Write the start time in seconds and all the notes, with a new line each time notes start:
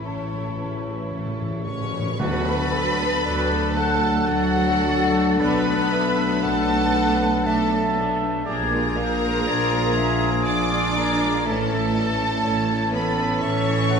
Already playing: A1 E4
0.01 A2 E3 A3 C#4 E4 A4 C#5 A5
0.09 A2
0.17 A2
0.25 A2
0.33 A2 E3 A3
0.41 A2
0.49 A2
0.57 A2 A3 C#4 B4
0.64 A2
0.72 A2
0.79 A2
0.87 A2 E3 A3
0.95 A2
1.03 A2
1.11 A2 A3 C#4 A4
1.18 A2
1.26 A2
1.34 A2
1.41 A2 E3 A3
1.50 A2
1.58 A2
1.66 A2 A3 C#4 B4 C#5 C#6
1.75 A2
1.83 A2
1.91 A2 E3 A3
1.99 A2
2.07 A2
2.19 D2 D3 F#3 B3 D4 F#4 A4 B4 B5 A6
2.48 A3 A4
2.73 F#3 F#4 A4
3.02 A3 A4
3.26 D2 F#3 F#4 D5 F#6
3.53 A3 A4
3.76 F#3 A3 F#4 A4 F#5 A5
4.03 A3 A4
4.28 D2 F#3 F#4 F#5 A6
4.56 A3 A4
4.84 F#3 F#4
5.13 A3 A4
5.39 B1 B3 D4 B4 D5 B5 F#6
5.67 A3 B3
5.93 B3 D4 E5
6.18 A3 B3
6.43 B1 A3 B3 D4 A4 B4 F#5 A5 F#6
6.69 A3 B3
6.95 B3 D4
7.21 A3 B3
7.45 B1 A3 B3 D4 A4 E5 A5 A6
7.72 A3 B3
7.97 B3 D4
8.22 A3 B3
8.45 A#1 F3 A#3 D4 G4 G#4 A#4 D5 A#5 G#6
8.72 G#3 F4
8.95 A#3 D4 F5 G6
9.22 G#3 F4
9.46 A#1 A#3 D4 F4 D5 G#6
9.73 G#3 F4
9.97 A#3 D4 E5
10.22 G#3 F4
10.46 A#1 A#3 D4 F4 D5 D6 G#6
10.71 G#3 F4
10.96 A#3 D4 A#4
11.21 G#3 F4
11.45 A1 E3 A3 C#4 A4 E5 A5 A6
11.72 A3 E4
11.95 E3 C#4 D5
12.21 A3 E4
12.44 A1 E3 C#4 C#5 A6
12.71 A3 E4
12.94 E3 B3 C#4 B4 B5
13.19 A3 E4
13.42 A1 E3 C#4 A4 C#5 E5 C#6 A6
13.66 A3 E4
13.90 E3 C#4 F#5